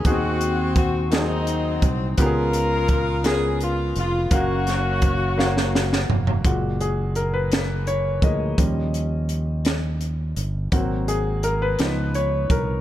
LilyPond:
<<
  \new Staff \with { instrumentName = "Saxophone section" } { \time 6/8 \key fis \major \tempo 4. = 56 << { fis'4 fis'8 dis'4 r8 | ais'4. gis'8 eis'8 eis'8 | fis'2~ fis'8 r8 | r2. |
r2. | r2. | } \\ { bis4. <fis bis>4. | eis'4. r4. | <ais cis'>2~ <ais cis'>8 r8 | r2. |
r2. | r2. | } >> }
  \new Staff \with { instrumentName = "Grand piano" } { \time 6/8 \key fis \major <b bis dis' fis' gis'>4 r8 <ais bis dis' fis' gis'>4 r8 | <b cis' eis' g' gis'>4 r8 <b cis' eis' ais'>4 r8 | <ais cis' fis' eis''>4 r8 <ais cis' fis' eis''>4 r8 | fis'8 gis'8 ais'16 b'8. cis''8 dis''8~ |
dis''4 r2 | fis'8 gis'8 ais'16 b'8. cis''8 ais'8 | }
  \new Staff \with { instrumentName = "Grand piano" } { \clef bass \time 6/8 \key fis \major dis4. r4. | cis4. r4. | r2. | <ais, gis eis'>2~ <ais, gis eis'>8 <eis gis ais>8 |
<eis g cis'>2. | <fis ais bis>8 r4 <eis b dis'>4. | }
  \new Staff \with { instrumentName = "Fingered electric bass" } { \clef bass \time 6/8 \key fis \major dis,2~ dis,8 bis,,8 | cis,2~ cis,8 eis,,8 | fis,,2~ fis,,8 eis,,8 | fis,,2~ fis,,8 d,8 |
dis,2~ dis,8 g,,8 | gis,,4. cis,4 bis,,8 | }
  \new DrumStaff \with { instrumentName = "Drums" } \drummode { \time 6/8 <hh bd>8 hh8 <hh bd>8 <hh sn>8 hh8 <hh bd>8 | <hh bd>8 hh8 <hh bd>8 <hh sn>8 hh8 hh8 | <hh bd>8 <hh sn>8 <hh bd>8 sn16 sn16 sn16 sn16 tomfh16 tomfh16 | <hh bd>8 hh8 hh8 <hh sn>8 hh8 <hh bd>8 |
<hh bd>8 hh8 hh8 <hh sn>8 hh8 hh8 | <hh bd>8 hh8 hh8 <hh sn>8 hh8 <hh bd>8 | }
>>